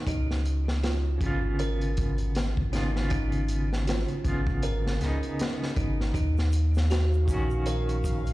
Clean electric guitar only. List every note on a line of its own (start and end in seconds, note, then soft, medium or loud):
1.18 2.68 C#3 medium
1.22 2.70 B3 medium
1.22 2.72 F4 medium
2.72 2.89 C#3 medium
2.72 2.90 B3 medium
2.72 2.91 F4 medium
2.96 4.22 B3 medium
3.00 4.24 F4 medium
4.24 4.96 C#3 medium
4.24 4.98 B3 medium
4.28 4.99 F4 medium
4.97 6.11 C#3 medium
5.01 6.13 B3 medium
5.05 6.15 D#4 medium
7.25 8.33 D#3 medium
7.29 8.33 C#4 medium
7.34 8.33 F#4 medium